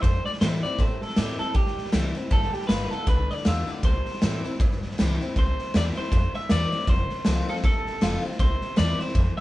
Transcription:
0.02 upright bass F2, steel-string acoustic guitar G2, clean electric guitar C5, kick, snare
0.25 clean electric guitar D5, muted upright bass stroke, snare
0.33 snare
0.41 upright bass A2, steel-string acoustic guitar E3 G3 C4 E4, clean electric guitar C5, snare, hi-hat pedal
0.63 steel-string acoustic guitar C4 E4, clean electric guitar D5, muted upright bass stroke, snare
0.78 upright bass A2, steel-string acoustic guitar C3, clean electric guitar C5, kick, snare
1.01 clean electric guitar A4, muted upright bass stroke, snare
1.09 snare
1.16 upright bass A2, steel-string acoustic guitar E3 G3 C4 E4, clean electric guitar G4, snare, hi-hat pedal
1.39 steel-string acoustic guitar C4 E4, clean electric guitar A4, muted upright bass stroke, snare
1.54 upright bass E2, steel-string acoustic guitar G2, clean electric guitar G4, kick, snare
1.67 snare
1.77 upright bass A1, snare
1.85 snare
1.92 upright bass C2, steel-string acoustic guitar E3 G3 C4 E4, snare, hi-hat pedal
2.15 steel-string acoustic guitar C4 E4, muted upright bass stroke, snare
2.31 upright bass G1, steel-string acoustic guitar G3, clean electric guitar A4, kick, snare
2.42 snare
2.53 clean electric guitar G4, muted upright bass stroke, snare
2.62 snare
2.67 upright bass G1, steel-string acoustic guitar G3 B3 F4, clean electric guitar B4, snare, hi-hat pedal
2.91 steel-string acoustic guitar B3 F4, clean electric guitar A4, muted upright bass stroke, snare
3.07 upright bass C2, steel-string acoustic guitar D3, clean electric guitar B4, kick, snare
3.30 clean electric guitar D5, muted upright bass stroke, snare
3.37 snare
3.45 upright bass E2, steel-string acoustic guitar G3 B3 F4, clean electric guitar E5, snare, hi-hat pedal
3.67 steel-string acoustic guitar B3 F4, clean electric guitar D5, muted upright bass stroke, snare
3.83 upright bass C2, steel-string acoustic guitar C3, clean electric guitar C5, kick, snare
4.05 muted upright bass stroke, snare
4.14 snare
4.22 upright bass A2, steel-string acoustic guitar E3 G3 C4 E4, snare, hi-hat pedal
4.44 steel-string acoustic guitar C4 E4, muted upright bass stroke, snare
4.60 upright bass E2, steel-string acoustic guitar G2, kick, snare
4.72 snare
4.82 upright bass A1, snare
4.91 snare
4.98 upright bass C2, steel-string acoustic guitar E3 G3 C4 E4, snare, hi-hat pedal
5.21 steel-string acoustic guitar C4 E4, muted upright bass stroke, snare
5.36 upright bass C2, steel-string acoustic guitar C3, clean electric guitar C5, kick, snare
5.59 muted upright bass stroke, snare
5.74 upright bass E2, steel-string acoustic guitar E3 G3 C4 E4, clean electric guitar D5, snare, hi-hat pedal
5.95 steel-string acoustic guitar C4 E4, clean electric guitar C5, muted upright bass stroke, snare
6.04 snare
6.11 upright bass F2, steel-string acoustic guitar G2, kick, snare
6.34 clean electric guitar E5, muted upright bass stroke, snare
6.49 upright bass E2, steel-string acoustic guitar E3 G3 C4 E4, clean electric guitar D5, snare, hi-hat pedal
6.71 steel-string acoustic guitar C4 E4, muted upright bass stroke, snare
6.79 snare
6.87 upright bass F1, steel-string acoustic guitar F2, clean electric guitar C5, kick, snare
7.10 muted upright bass stroke, snare
7.25 upright bass C2, steel-string acoustic guitar F3 A3 C4 F4, snare, hi-hat pedal
7.48 steel-string acoustic guitar C4 F4, clean electric guitar A4, muted upright bass stroke, snare
7.56 snare
7.64 upright bass A1, steel-string acoustic guitar C3, clean electric guitar A4, kick, snare
7.86 upright bass A1, snare
8.01 upright bass F1, steel-string acoustic guitar F3 A3 C4 F4, snare, hi-hat pedal
8.22 steel-string acoustic guitar C4 F4, muted upright bass stroke, snare
8.31 snare
8.39 upright bass C2, steel-string acoustic guitar C3, clean electric guitar C5, kick, snare
8.61 muted upright bass stroke, snare
8.76 upright bass E2, steel-string acoustic guitar E3 G3 C4 E4, clean electric guitar D5, snare, hi-hat pedal
8.99 steel-string acoustic guitar C4 E4, clean electric guitar C5, muted upright bass stroke, snare
9.07 snare
9.14 upright bass F2, steel-string acoustic guitar E3, kick, snare
9.37 snare

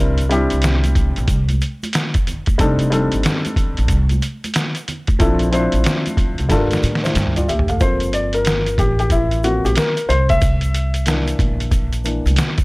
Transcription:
Already playing: upright bass C2, grand piano G3 C4 D4 E4 A#4
0.18 closed hi-hat, shaker
0.29 grand piano G3 C4 D4 E4 G4, closed hi-hat, shaker
0.50 upright bass C2, closed hi-hat, shaker
0.62 snare, closed hi-hat, low conga, shaker
0.84 closed hi-hat, high conga, shaker
0.95 kick, closed hi-hat, high conga, low conga, shaker
1.16 upright bass A#1, closed hi-hat, shaker
1.28 upright bass C2, kick, closed hi-hat, shaker
1.49 closed hi-hat, high conga, shaker
1.61 closed hi-hat, shaker
1.83 closed hi-hat, high conga, shaker
1.93 snare, closed hi-hat, shaker
2.14 kick, closed hi-hat, shaker
2.27 closed hi-hat, low conga, shaker
2.46 kick, closed hi-hat, high conga, shaker
2.58 upright bass F1, grand piano G3 C4 D4 D#4 A4, kick, closed hi-hat, shaker
2.79 closed hi-hat, shaker
2.90 grand piano G3 C4 D4 D#4 A4, closed hi-hat, shaker
3.12 upright bass G1, closed hi-hat, shaker
3.23 snare, closed hi-hat, low conga, shaker
3.45 closed hi-hat, high conga, shaker
3.56 kick, closed hi-hat, high conga, low conga, shaker
3.77 upright bass A1, closed hi-hat, shaker
3.88 upright bass C2, kick, closed hi-hat, shaker
4.09 closed hi-hat, high conga, shaker
4.22 closed hi-hat, shaker
4.44 closed hi-hat, high conga, shaker
4.54 snare, closed hi-hat, shaker
4.75 closed hi-hat, shaker
4.88 closed hi-hat, low conga, shaker
5.07 kick, closed hi-hat, high conga, shaker
5.19 upright bass A#1, grand piano F3 C4 D4 E4 A4, kick, closed hi-hat, shaker
5.39 closed hi-hat, shaker
5.51 grand piano F3 C4 D4 E4 C5, closed hi-hat, shaker
5.72 upright bass A1, closed hi-hat, shaker
5.84 snare, closed hi-hat, low conga, shaker
6.06 closed hi-hat, high conga, shaker
6.17 kick, closed hi-hat, high conga, low conga, shaker
6.38 upright bass C2, closed hi-hat, shaker
6.49 upright bass G2, grand piano G3 A3 D4 F4 A4, kick, snare, closed hi-hat, shaker
6.56 grand piano A#4
6.71 snare, closed hi-hat, high conga, shaker
6.83 upright bass A2, closed hi-hat, shaker
6.95 snare
7.04 grand piano E4 C5, snare, closed hi-hat, high conga, shaker
7.15 upright bass G2, snare, closed hi-hat, shaker
7.27 mid tom
7.36 grand piano F4 D5, closed hi-hat, mid tom, shaker
7.48 upright bass D2, grand piano G4 E5, closed hi-hat, low conga, shaker
7.59 floor tom
7.68 grand piano A4 F5, closed hi-hat, floor tom, high conga, shaker
7.80 upright bass G1, grand piano F3 A#3 C4 A4 C5, kick, closed hi-hat, shaker
8.00 closed hi-hat, shaker
8.13 grand piano D5, closed hi-hat, shaker
8.33 grand piano A#4, closed hi-hat, shaker
8.45 snare, closed hi-hat, low conga, shaker
8.66 closed hi-hat, shaker
8.78 upright bass A1, grand piano G4, kick, closed hi-hat, high conga, low conga, shaker
8.99 grand piano G4, closed hi-hat, shaker
9.10 grand piano E4, kick, closed hi-hat, shaker
9.31 closed hi-hat, shaker
9.43 grand piano F3 A3 A#3 C4 F#4, closed hi-hat, shaker
9.65 upright bass A#1, grand piano G4, closed hi-hat, high conga, shaker
9.76 grand piano A#4, snare, closed hi-hat, shaker
9.97 closed hi-hat, shaker
10.09 upright bass C2, grand piano C5, closed hi-hat, low conga, shaker
10.29 grand piano E5, kick, closed hi-hat, high conga, shaker
10.41 kick, closed hi-hat, shaker
10.61 closed hi-hat, shaker
10.74 closed hi-hat, shaker
10.94 closed hi-hat, shaker
11.06 grand piano E3 A#3 D4, snare, closed hi-hat, low conga, shaker
11.28 closed hi-hat, shaker
11.39 upright bass A#1, kick, closed hi-hat, high conga, low conga, shaker
11.60 closed hi-hat, shaker
11.71 kick, closed hi-hat, shaker
11.93 closed hi-hat, shaker
12.04 grand piano E3 A#3 D4, closed hi-hat, shaker
12.26 upright bass C2, closed hi-hat, high conga, shaker
12.36 snare, closed hi-hat, shaker
12.58 kick, closed hi-hat, shaker

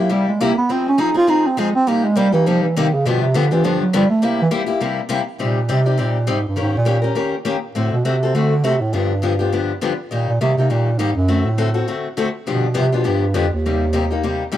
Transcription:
0.00 bass clarinet F#3
0.09 steel-string acoustic guitar C3 G3 A#3 E4 G4, bass clarinet G3
0.28 bass clarinet G#3
0.40 steel-string acoustic guitar C3 G3 A#3 E4 G4, bass clarinet A#3
0.58 bass clarinet B3
0.69 steel-string acoustic guitar F3 C4 D#4 G#4, bass clarinet C4
0.88 bass clarinet C#4
0.98 steel-string acoustic guitar F3 C4 D#4 G#4, bass clarinet D#4
1.14 steel-string acoustic guitar C4 D#4 G#4, bass clarinet F4
1.27 steel-string acoustic guitar F3 C4 D#4 G#4, bass clarinet D#4
1.47 bass clarinet C4
1.57 steel-string acoustic guitar F3 C4 D#4 G#4, bass clarinet G#3
1.75 bass clarinet C4
1.87 steel-string acoustic guitar C3 G3 A#3 D#4 G4, bass clarinet A#3
2.05 bass clarinet G#3
2.16 steel-string acoustic guitar C3 G3 A#3 D#4 G4, bass clarinet G3
2.32 bass clarinet E3, steel-string acoustic guitar A#3 D#4 G4
2.46 steel-string acoustic guitar C3 G3 A#3 D#4 G4, bass clarinet F3
2.63 bass clarinet E3
2.76 steel-string acoustic guitar C3 G3 A#3 D#4 G4, bass clarinet D#3
2.94 bass clarinet C#3
3.05 steel-string acoustic guitar G2 D3 F3 B3 D4 G4, bass clarinet B2
3.22 bass clarinet C3
3.34 steel-string acoustic guitar G2 D3 F3 B3 D4 G4, bass clarinet D3
3.51 bass clarinet E3, steel-string acoustic guitar F3 B3 D4 G4
3.64 steel-string acoustic guitar G2 D3 F3 B3 D4 G4, bass clarinet F3
3.81 bass clarinet F#3
3.93 steel-string acoustic guitar G2 D3 F3 B3 D4 G4, bass clarinet G3
4.10 bass clarinet A3
4.22 steel-string acoustic guitar C3 G3 A#3 E4 G4, bass clarinet A#3
4.42 bass clarinet E3
4.51 steel-string acoustic guitar C3 G3 A#3 E4 G4
4.66 steel-string acoustic guitar A#3 E4 G4
4.81 steel-string acoustic guitar C3 G3 A#3 E4 G4
5.09 steel-string acoustic guitar C3 G3 A#3 E4 G4
5.39 bass clarinet A#2, steel-string acoustic guitar C3 G3 C4 D#4 G4 D5
5.68 steel-string acoustic guitar C3 G3 C4 D#4 G4 D5, bass clarinet C3
5.86 steel-string acoustic guitar C4 D#4 G4 D5
5.97 bass clarinet A#2, steel-string acoustic guitar C3 G3 C4 D#4 G4 D5
6.27 bass clarinet G#2, steel-string acoustic guitar C3 G3 C4 D#4 G4 D5
6.48 bass clarinet G2
6.56 steel-string acoustic guitar D#3 A#3 C#4 G4 A#4
6.61 bass clarinet G#2
6.77 bass clarinet A#2
6.85 steel-string acoustic guitar D#3 A#3 C#4 G4 A#4
7.02 steel-string acoustic guitar C#4 G4 A#4
7.15 steel-string acoustic guitar D#3 A#3 C#4 G4 A#4
7.45 steel-string acoustic guitar D#3 A#3 C#4 G4 A#4
7.75 bass clarinet A2, steel-string acoustic guitar D3 A3 C4 F#4 A4
7.92 bass clarinet B2
8.05 bass clarinet C3, steel-string acoustic guitar D3 A3 C4 F#4 A4
8.23 steel-string acoustic guitar C4 F#4 A4
8.35 steel-string acoustic guitar D3 A3 C4 F#4 A4, bass clarinet D3
8.64 bass clarinet C3, steel-string acoustic guitar D3 A3 C4 F#4 A4
8.81 bass clarinet A2
8.93 steel-string acoustic guitar G2 D3 F3 B3 D4 G4, bass clarinet G2
9.22 steel-string acoustic guitar G2 D3 F3 B3 D4 G4
9.39 steel-string acoustic guitar F3 B3 D4 G4
9.52 steel-string acoustic guitar G2 D3 F3 B3 D4 G4
9.81 steel-string acoustic guitar G2 D3 F3 B3 D4 G4
10.11 bass clarinet A#2, steel-string acoustic guitar D#3 G3 A#3 D#4 G4
10.28 bass clarinet A#2
10.41 bass clarinet C3, steel-string acoustic guitar D#3 G3 A#3 D#4 G4
10.57 bass clarinet C3, steel-string acoustic guitar A#3 D#4 G4
10.70 bass clarinet A#2, steel-string acoustic guitar D#3 G3 A#3 D#4 G4
10.98 bass clarinet G#2, steel-string acoustic guitar D#3 G3 A#3 D#4 G4
11.15 bass clarinet F#2
11.28 steel-string acoustic guitar D3 A3 C4 F#4 A4
11.45 bass clarinet A2
11.58 steel-string acoustic guitar D3 A3 C4 F#4 A4
11.74 steel-string acoustic guitar C4 F#4 A4
11.88 steel-string acoustic guitar D3 A3 C4 F#4 A4
12.17 steel-string acoustic guitar D3 A3 C4 F#4 A4
12.47 steel-string acoustic guitar G2 D3 F3 B3 D4 G4, bass clarinet B2
12.74 steel-string acoustic guitar G2 D3 F3 B3 D4 G4, bass clarinet C3
12.92 bass clarinet B2, steel-string acoustic guitar F3 B3 D4 G4
13.04 steel-string acoustic guitar G2 D3 F3 B3 D4 G4, bass clarinet G2
13.34 bass clarinet F2, steel-string acoustic guitar G2 D3 F3 B3 D4 G4
13.53 bass clarinet D#2
13.66 steel-string acoustic guitar C3 G3 A#3 D#4 G4
13.93 steel-string acoustic guitar C3 G3 A#3 D#4 G4
14.11 steel-string acoustic guitar A#3 D#4 G4
14.23 steel-string acoustic guitar C3 G3 A#3 D#4 G4
14.52 steel-string acoustic guitar C3 G3 A#3 D#4 G4

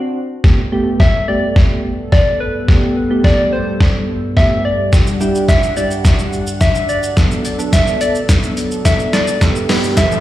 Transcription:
Already playing: synth keys C4 D4 F#4
0.44 analog synth pad G2 G3 B3 A4, synth keys A3 B3 G4, kick, snare
0.72 synth keys A3 B3 G4
1.00 soft synth lead E5, kick, snare
1.28 synth keys A3 B3 G4, soft synth lead D5
1.56 kick, snare
2.12 soft synth lead D5, kick, snare
2.40 soft synth lead B4
2.68 synth keys A3 B3 G4, kick, snare
3.10 synth keys A3 B3 G4
3.24 soft synth lead D5, kick, snare
3.53 soft synth lead C5
3.81 kick, snare
4.36 synth keys A3 B3 G4, soft synth lead E5, kick, snare
4.65 soft synth lead D5
4.92 synth keys G3 D4 E4 G4, analog synth pad D4 F#5, kick, snare, shaker
5.07 shaker
5.20 synth keys G3 D4 E4 G4, shaker
5.35 shaker
5.48 soft synth lead E5, kick, snare, shaker
5.63 shaker
5.76 synth keys G3 D4 E4 G4, soft synth lead D5, shaker
5.91 shaker
6.04 kick, snare, shaker
6.19 shaker
6.33 shaker
6.47 shaker
6.61 soft synth lead E5, kick, snare, shaker
6.75 shaker
6.89 soft synth lead D5, shaker
7.03 shaker
7.16 synth keys F#3 B3 D4 A4, analog synth pad F#3 B3 A4, kick, snare, closed hi-hat, shaker
7.31 shaker
7.45 closed hi-hat, shaker
7.59 synth keys F#3 B3 D4 A4, shaker
7.73 soft synth lead E5, kick, snare, closed hi-hat, shaker
7.87 shaker
8.01 soft synth lead D5, closed hi-hat, shaker
8.15 shaker
8.29 kick, snare, closed hi-hat, shaker
8.43 shaker
8.57 closed hi-hat, shaker
8.71 shaker
8.85 synth keys F#3 B3 D4 A4, soft synth lead E5, kick, snare, closed hi-hat, shaker
8.99 shaker
9.13 soft synth lead D5, snare, closed hi-hat, shaker
9.27 shaker
9.41 analog synth pad G2 G3, synth keys B3 G4 A4, kick, snare, closed hi-hat, riser, shaker
9.55 shaker
9.69 synth keys B3 G4 B4, snare, open hi-hat, shaker
9.83 shaker
9.97 soft synth lead E5, kick, snare, clap, closed hi-hat, shaker
10.11 shaker

